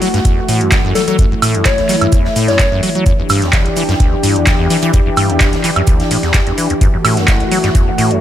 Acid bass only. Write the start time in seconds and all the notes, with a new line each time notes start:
0.02 F#3
0.14 G2
0.25 E2
0.37 F#2
0.48 A2
0.61 F#2
0.72 F#2
0.84 F#2
0.95 F#3
1.08 F#3
1.19 F#2
1.31 F#2
1.42 A2
1.55 F#2
1.66 F#1
1.78 A2
1.89 F#3
2.01 G2
2.13 E2
2.25 F#2
2.36 A2
2.48 F#2
2.60 F#2
2.72 F#2
2.83 F#3
2.95 F#3
3.06 E2
3.19 E2
3.30 G2
3.42 E2
3.53 E1
3.66 G2
3.77 E3
3.89 F#2
4.00 D2
4.12 E2
4.23 G2
4.36 E2
4.47 E2
4.59 E2
4.70 E3
4.82 E3
4.94 E2
5.06 E2
5.17 G2
5.29 E2
5.40 E1
5.53 G2
5.64 E3
5.76 F#2
5.87 D2
6.00 E2
6.11 A2
6.23 E2
6.34 E2
6.47 E2
6.58 E3
6.70 E2
6.81 F#2
6.94 F#2
7.05 A2
7.17 F#2
7.28 F#1
7.40 A2
7.51 F#3
7.64 G2
7.75 E2
7.87 F#2
7.98 A2
8.11 F#2